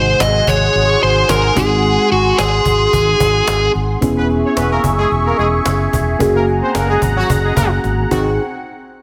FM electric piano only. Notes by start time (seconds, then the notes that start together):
Already playing: C3 G#3 D#4 F#4
1.55 G#3 C4 D#4 F#4
4.01 B3 C#4 E4 G#4
6.19 A#3 C#4 F#4 G#4
8.11 C4 D#4 F#4 G#4